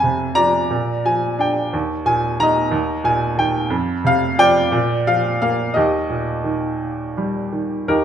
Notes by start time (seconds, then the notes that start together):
Already playing: F2
0.00 C3 G#5
0.35 F3 D5 A#5
0.71 A#2
1.06 F3 G#5
1.39 D4 G5
1.73 D#2
2.06 A#2 G#5
2.40 D#3 D#5 A#5
2.71 D#2
3.04 A#2 G#5
3.37 D#3 G5
3.70 F2
4.04 C3 F5
4.38 F3 D5 G5
4.72 A#2
5.07 F3 F5
5.42 A#3 F5
5.74 D#2 G4 D#5
6.10 A#2
6.44 D#3
7.18 G3
7.52 D#3
7.88 D#2 D#4 G4 A#4